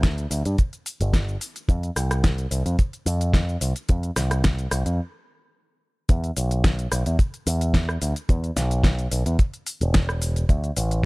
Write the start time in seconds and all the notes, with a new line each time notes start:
Already playing: D2
0.03 kick, snare, closed hi-hat, shaker
0.18 closed hi-hat, shaker
0.31 D2, open hi-hat, shaker
0.45 G2, closed hi-hat, shaker
0.58 kick, closed hi-hat, shaker
0.73 closed hi-hat, shaker
0.86 open hi-hat, shaker
1.01 G1, closed hi-hat, shaker
1.14 kick, snare, closed hi-hat, shaker
1.28 shaker
1.41 open hi-hat, shaker
1.56 closed hi-hat, shaker
1.69 F2, kick, closed hi-hat, shaker
1.83 closed hi-hat, shaker
1.96 C2, cross-stick, open hi-hat, shaker
2.11 cross-stick, closed hi-hat, shaker
2.24 kick, snare, closed hi-hat, shaker
2.38 closed hi-hat, shaker
2.51 C2, open hi-hat, shaker
2.66 F2, closed hi-hat, shaker
2.79 kick, closed hi-hat, shaker
2.93 closed hi-hat, shaker
3.06 F2, open hi-hat, shaker
3.21 closed hi-hat, shaker
3.34 kick, snare, closed hi-hat, shaker
3.49 shaker
3.61 C2, open hi-hat, shaker
3.76 closed hi-hat, shaker
3.89 F2, kick, closed hi-hat, shaker
4.03 closed hi-hat, shaker
4.16 C2, cross-stick, snare, open hi-hat, shaker
4.31 cross-stick, closed hi-hat, shaker
4.44 kick, snare, closed hi-hat, shaker
4.59 closed hi-hat, shaker
4.71 C2, cross-stick, open hi-hat, shaker
4.86 F2, closed hi-hat, shaker
6.09 E2, kick, closed hi-hat, shaker
6.24 closed hi-hat, shaker
6.37 B1, open hi-hat, shaker
6.51 closed hi-hat, shaker
6.64 kick, snare, closed hi-hat, shaker
6.79 closed hi-hat, shaker
6.92 B1, cross-stick, open hi-hat, shaker
7.06 E2, closed hi-hat, shaker
7.19 kick, closed hi-hat, shaker
7.34 closed hi-hat, shaker
7.47 E2, open hi-hat, shaker
7.61 closed hi-hat, shaker
7.74 kick, snare, closed hi-hat, shaker
7.89 cross-stick, shaker
8.02 D2, open hi-hat, shaker
8.16 closed hi-hat, shaker
8.29 E2, kick, closed hi-hat, shaker
8.44 closed hi-hat, shaker
8.56 B1, snare, open hi-hat, shaker
8.71 closed hi-hat, shaker
8.84 kick, snare, closed hi-hat, shaker
8.99 closed hi-hat, shaker
9.11 B1, open hi-hat, shaker
9.26 E2, closed hi-hat, shaker
9.39 kick, closed hi-hat, shaker
9.54 closed hi-hat, shaker
9.66 open hi-hat, shaker
9.81 E1, closed hi-hat, shaker
9.94 kick, snare, closed hi-hat, shaker
10.09 cross-stick, shaker
10.22 open hi-hat, shaker
10.36 closed hi-hat, shaker
10.49 D2, kick, closed hi-hat, shaker
10.64 closed hi-hat, shaker
10.77 A1, open hi-hat, shaker
10.91 closed hi-hat, shaker